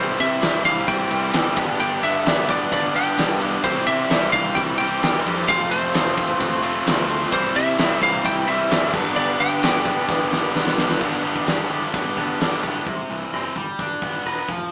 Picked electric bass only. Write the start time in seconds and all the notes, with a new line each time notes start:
Already playing: C2
0.20 C3
0.43 C2
0.65 C2
0.88 C2
1.11 C2
1.34 G1
1.57 G1
1.80 G1
2.03 G1
2.25 G1
2.72 G1
3.17 C2
3.64 C2
3.87 C3
4.10 C2
4.33 C2
4.56 C2
4.79 C2
5.02 G1
5.25 F2
5.49 F1
5.72 F1
5.95 F1
6.41 F1
6.86 D2
7.33 C2
7.56 C3
7.78 C2
8.02 C2
8.25 C2
8.48 C2
8.71 F#1
8.93 G1
9.16 G1
9.40 G1
9.63 G1
10.09 G1
10.55 C2
11.01 G1
11.24 G1
11.48 G1
11.70 G1
11.94 G1
12.17 G1
12.40 G1
12.64 G1
12.86 C2
13.09 C2
13.33 F#1
13.56 G1
13.79 G1
14.02 G1
14.24 E1
14.49 F1